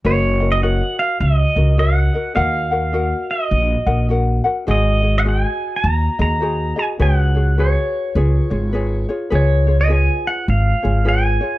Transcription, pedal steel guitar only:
0.06 0.49 C#5 medium
0.52 0.63 D#5 medium
0.63 0.99 F#5 medium
0.99 1.20 F5 medium
1.21 1.79 D#5 medium
1.79 2.35 F#5 medium
2.36 3.30 F5 medium
3.31 4.06 D#5 medium
4.71 5.17 D#5 medium
5.18 5.22 F#5 medium
5.29 5.46 G5 medium
5.46 5.75 G#5 medium
5.76 6.20 A#5 medium
6.22 6.79 A#5 loud
6.79 6.85 G#5 medium
7.02 7.61 F#5 medium
7.60 9.06 C#5 medium
9.35 9.77 C#5 medium
9.81 9.91 D#5 medium
9.93 10.27 G#5 medium
10.27 10.49 F#5 medium
10.50 11.08 F5 medium
11.09 11.58 G#5 medium

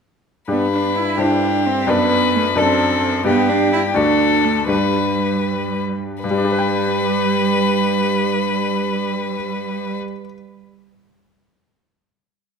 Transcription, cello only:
0.51 0.72 B3 medium
0.73 0.98 D4 medium
0.96 1.22 E4 medium
1.20 1.68 D4 medium
1.67 1.92 C4 medium
1.90 2.35 B3 medium
2.36 2.44 A3 medium
2.58 3.25 C4 medium
3.27 3.51 B3 medium
3.49 3.72 D4 medium
3.73 3.81 E4 medium
3.96 4.46 D4 medium
4.45 4.69 A3 medium
4.70 5.95 G3 medium
6.24 9.98 G3 medium

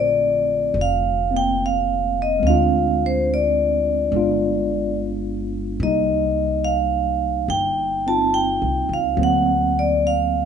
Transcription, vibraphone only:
0.00 0.79 D5 medium
0.81 1.36 F5 medium
1.36 1.62 G5 medium
1.66 2.21 F5 medium
2.22 2.47 D#5 medium
2.47 3.04 F5 medium
3.06 3.29 C5 medium
3.34 4.95 D5 medium
5.83 6.69 D#5 medium
6.64 7.45 F5 medium
7.50 8.08 G5 medium
8.08 8.35 A5 medium
8.34 8.92 G5 medium
8.93 9.20 F5 medium
9.23 9.79 F#5 medium
9.79 10.05 D5 medium
10.07 10.45 F5 medium

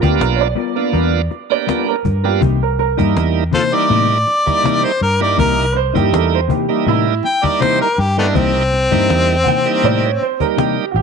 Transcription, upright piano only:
0.04 0.19 G4 medium
0.22 0.39 A#4 medium
0.36 0.40 C#5 medium
0.41 1.48 D5 medium
1.52 1.87 D5 medium
1.89 2.24 A#4 medium
2.25 2.61 G4 medium
2.63 2.78 A#4 medium
2.79 3.34 A#4 medium
5.72 5.76 B4 medium
5.77 5.94 C5 medium
5.97 6.12 G4 medium
6.15 6.32 A4 medium
6.34 6.49 C5 medium
6.51 6.86 G4 medium
6.88 7.23 E4 medium
9.43 9.48 F#5 medium
9.48 9.83 G5 loud
9.85 10.02 D5 medium
10.04 10.20 C#5 medium
10.22 10.40 C5 medium
10.41 10.57 A#4 medium
10.59 10.94 G4 medium
10.91 10.96 F#4 medium
10.96 11.02 G4 medium

